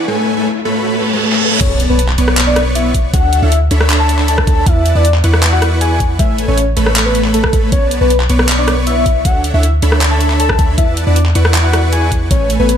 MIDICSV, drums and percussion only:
0, 0, Header, 1, 2, 480
1, 0, Start_track
1, 0, Key_signature, 3, "major"
1, 0, Tempo, 382166
1, 99, Time_signature, 4, 2, 24, 8
1, 16044, End_track
2, 0, Start_track
2, 0, Title_t, "Drums"
2, 1660, Note_on_c, 9, 38, 54
2, 1778, Note_on_c, 9, 47, 81
2, 1786, Note_off_c, 9, 38, 0
2, 1901, Note_on_c, 9, 45, 81
2, 1904, Note_off_c, 9, 47, 0
2, 2018, Note_on_c, 9, 42, 83
2, 2018, Note_on_c, 9, 49, 103
2, 2019, Note_on_c, 9, 36, 124
2, 2026, Note_off_c, 9, 45, 0
2, 2144, Note_off_c, 9, 36, 0
2, 2144, Note_off_c, 9, 42, 0
2, 2144, Note_off_c, 9, 49, 0
2, 2258, Note_on_c, 9, 42, 69
2, 2384, Note_off_c, 9, 42, 0
2, 2498, Note_on_c, 9, 42, 84
2, 2620, Note_on_c, 9, 39, 37
2, 2624, Note_off_c, 9, 42, 0
2, 2738, Note_on_c, 9, 42, 68
2, 2746, Note_off_c, 9, 39, 0
2, 2861, Note_on_c, 9, 37, 77
2, 2864, Note_off_c, 9, 42, 0
2, 2979, Note_on_c, 9, 39, 125
2, 2979, Note_on_c, 9, 42, 84
2, 2986, Note_off_c, 9, 37, 0
2, 3104, Note_off_c, 9, 39, 0
2, 3104, Note_off_c, 9, 42, 0
2, 3219, Note_on_c, 9, 37, 75
2, 3219, Note_on_c, 9, 42, 71
2, 3344, Note_off_c, 9, 37, 0
2, 3344, Note_off_c, 9, 42, 0
2, 3459, Note_on_c, 9, 42, 83
2, 3585, Note_off_c, 9, 42, 0
2, 3698, Note_on_c, 9, 36, 59
2, 3699, Note_on_c, 9, 42, 68
2, 3824, Note_off_c, 9, 36, 0
2, 3824, Note_off_c, 9, 42, 0
2, 3938, Note_on_c, 9, 36, 127
2, 3938, Note_on_c, 9, 42, 80
2, 4064, Note_off_c, 9, 36, 0
2, 4064, Note_off_c, 9, 42, 0
2, 4178, Note_on_c, 9, 42, 69
2, 4304, Note_off_c, 9, 42, 0
2, 4418, Note_on_c, 9, 42, 81
2, 4544, Note_off_c, 9, 42, 0
2, 4658, Note_on_c, 9, 42, 68
2, 4780, Note_on_c, 9, 37, 79
2, 4784, Note_off_c, 9, 42, 0
2, 4898, Note_on_c, 9, 39, 127
2, 4898, Note_on_c, 9, 42, 84
2, 4906, Note_off_c, 9, 37, 0
2, 5023, Note_off_c, 9, 39, 0
2, 5023, Note_off_c, 9, 42, 0
2, 5138, Note_on_c, 9, 42, 69
2, 5260, Note_on_c, 9, 39, 38
2, 5264, Note_off_c, 9, 42, 0
2, 5378, Note_on_c, 9, 42, 82
2, 5386, Note_off_c, 9, 39, 0
2, 5500, Note_on_c, 9, 37, 79
2, 5501, Note_on_c, 9, 36, 66
2, 5504, Note_off_c, 9, 42, 0
2, 5618, Note_off_c, 9, 36, 0
2, 5618, Note_on_c, 9, 36, 107
2, 5618, Note_on_c, 9, 42, 64
2, 5626, Note_off_c, 9, 37, 0
2, 5744, Note_off_c, 9, 36, 0
2, 5744, Note_off_c, 9, 42, 0
2, 5859, Note_on_c, 9, 36, 127
2, 5859, Note_on_c, 9, 42, 78
2, 5984, Note_off_c, 9, 36, 0
2, 5985, Note_off_c, 9, 42, 0
2, 6099, Note_on_c, 9, 42, 66
2, 6225, Note_off_c, 9, 42, 0
2, 6339, Note_on_c, 9, 42, 75
2, 6461, Note_on_c, 9, 39, 39
2, 6464, Note_off_c, 9, 42, 0
2, 6579, Note_on_c, 9, 42, 64
2, 6587, Note_off_c, 9, 39, 0
2, 6701, Note_on_c, 9, 37, 81
2, 6705, Note_off_c, 9, 42, 0
2, 6819, Note_on_c, 9, 39, 127
2, 6819, Note_on_c, 9, 42, 80
2, 6827, Note_off_c, 9, 37, 0
2, 6945, Note_off_c, 9, 39, 0
2, 6945, Note_off_c, 9, 42, 0
2, 7059, Note_on_c, 9, 37, 77
2, 7059, Note_on_c, 9, 42, 66
2, 7185, Note_off_c, 9, 37, 0
2, 7185, Note_off_c, 9, 42, 0
2, 7299, Note_on_c, 9, 42, 77
2, 7425, Note_off_c, 9, 42, 0
2, 7539, Note_on_c, 9, 36, 63
2, 7539, Note_on_c, 9, 42, 61
2, 7664, Note_off_c, 9, 36, 0
2, 7664, Note_off_c, 9, 42, 0
2, 7779, Note_on_c, 9, 36, 126
2, 7779, Note_on_c, 9, 42, 76
2, 7904, Note_off_c, 9, 36, 0
2, 7905, Note_off_c, 9, 42, 0
2, 8019, Note_on_c, 9, 42, 65
2, 8145, Note_off_c, 9, 42, 0
2, 8259, Note_on_c, 9, 42, 78
2, 8385, Note_off_c, 9, 42, 0
2, 8499, Note_on_c, 9, 42, 62
2, 8621, Note_on_c, 9, 37, 82
2, 8625, Note_off_c, 9, 42, 0
2, 8739, Note_on_c, 9, 39, 127
2, 8739, Note_on_c, 9, 42, 78
2, 8747, Note_off_c, 9, 37, 0
2, 8865, Note_off_c, 9, 39, 0
2, 8865, Note_off_c, 9, 42, 0
2, 8979, Note_on_c, 9, 42, 64
2, 9101, Note_on_c, 9, 39, 38
2, 9105, Note_off_c, 9, 42, 0
2, 9219, Note_on_c, 9, 42, 76
2, 9227, Note_off_c, 9, 39, 0
2, 9341, Note_on_c, 9, 36, 66
2, 9341, Note_on_c, 9, 37, 83
2, 9345, Note_off_c, 9, 42, 0
2, 9459, Note_off_c, 9, 36, 0
2, 9459, Note_on_c, 9, 36, 107
2, 9459, Note_on_c, 9, 42, 60
2, 9466, Note_off_c, 9, 37, 0
2, 9584, Note_off_c, 9, 36, 0
2, 9584, Note_off_c, 9, 42, 0
2, 9698, Note_on_c, 9, 42, 79
2, 9699, Note_on_c, 9, 36, 123
2, 9824, Note_off_c, 9, 36, 0
2, 9824, Note_off_c, 9, 42, 0
2, 9938, Note_on_c, 9, 42, 67
2, 10064, Note_off_c, 9, 42, 0
2, 10178, Note_on_c, 9, 42, 75
2, 10301, Note_on_c, 9, 39, 38
2, 10304, Note_off_c, 9, 42, 0
2, 10418, Note_on_c, 9, 42, 64
2, 10427, Note_off_c, 9, 39, 0
2, 10540, Note_on_c, 9, 37, 83
2, 10544, Note_off_c, 9, 42, 0
2, 10658, Note_on_c, 9, 39, 125
2, 10658, Note_on_c, 9, 42, 78
2, 10666, Note_off_c, 9, 37, 0
2, 10784, Note_off_c, 9, 39, 0
2, 10784, Note_off_c, 9, 42, 0
2, 10898, Note_on_c, 9, 37, 85
2, 10898, Note_on_c, 9, 42, 65
2, 11024, Note_off_c, 9, 37, 0
2, 11024, Note_off_c, 9, 42, 0
2, 11138, Note_on_c, 9, 42, 76
2, 11264, Note_off_c, 9, 42, 0
2, 11378, Note_on_c, 9, 42, 59
2, 11379, Note_on_c, 9, 36, 60
2, 11504, Note_off_c, 9, 36, 0
2, 11504, Note_off_c, 9, 42, 0
2, 11618, Note_on_c, 9, 42, 80
2, 11619, Note_on_c, 9, 36, 117
2, 11744, Note_off_c, 9, 36, 0
2, 11744, Note_off_c, 9, 42, 0
2, 11859, Note_on_c, 9, 42, 66
2, 11984, Note_off_c, 9, 42, 0
2, 12098, Note_on_c, 9, 42, 79
2, 12224, Note_off_c, 9, 42, 0
2, 12339, Note_on_c, 9, 42, 65
2, 12460, Note_on_c, 9, 37, 84
2, 12464, Note_off_c, 9, 42, 0
2, 12579, Note_on_c, 9, 39, 119
2, 12579, Note_on_c, 9, 42, 82
2, 12586, Note_off_c, 9, 37, 0
2, 12704, Note_off_c, 9, 39, 0
2, 12704, Note_off_c, 9, 42, 0
2, 12818, Note_on_c, 9, 42, 65
2, 12940, Note_on_c, 9, 39, 35
2, 12944, Note_off_c, 9, 42, 0
2, 13058, Note_on_c, 9, 42, 78
2, 13066, Note_off_c, 9, 39, 0
2, 13181, Note_on_c, 9, 36, 60
2, 13181, Note_on_c, 9, 37, 83
2, 13184, Note_off_c, 9, 42, 0
2, 13299, Note_off_c, 9, 36, 0
2, 13299, Note_on_c, 9, 36, 101
2, 13299, Note_on_c, 9, 42, 61
2, 13306, Note_off_c, 9, 37, 0
2, 13424, Note_off_c, 9, 36, 0
2, 13424, Note_off_c, 9, 42, 0
2, 13538, Note_on_c, 9, 42, 84
2, 13539, Note_on_c, 9, 36, 116
2, 13664, Note_off_c, 9, 36, 0
2, 13664, Note_off_c, 9, 42, 0
2, 13778, Note_on_c, 9, 42, 68
2, 13904, Note_off_c, 9, 42, 0
2, 14018, Note_on_c, 9, 42, 82
2, 14140, Note_on_c, 9, 39, 37
2, 14144, Note_off_c, 9, 42, 0
2, 14258, Note_on_c, 9, 42, 67
2, 14266, Note_off_c, 9, 39, 0
2, 14381, Note_on_c, 9, 37, 86
2, 14384, Note_off_c, 9, 42, 0
2, 14498, Note_on_c, 9, 39, 120
2, 14498, Note_on_c, 9, 42, 87
2, 14506, Note_off_c, 9, 37, 0
2, 14624, Note_off_c, 9, 39, 0
2, 14624, Note_off_c, 9, 42, 0
2, 14738, Note_on_c, 9, 37, 80
2, 14738, Note_on_c, 9, 42, 69
2, 14864, Note_off_c, 9, 37, 0
2, 14864, Note_off_c, 9, 42, 0
2, 14978, Note_on_c, 9, 42, 82
2, 15104, Note_off_c, 9, 42, 0
2, 15218, Note_on_c, 9, 36, 57
2, 15219, Note_on_c, 9, 42, 66
2, 15344, Note_off_c, 9, 36, 0
2, 15344, Note_off_c, 9, 42, 0
2, 15458, Note_on_c, 9, 36, 118
2, 15458, Note_on_c, 9, 42, 84
2, 15584, Note_off_c, 9, 36, 0
2, 15584, Note_off_c, 9, 42, 0
2, 15698, Note_on_c, 9, 42, 69
2, 15824, Note_off_c, 9, 42, 0
2, 15938, Note_on_c, 9, 42, 83
2, 16044, Note_off_c, 9, 42, 0
2, 16044, End_track
0, 0, End_of_file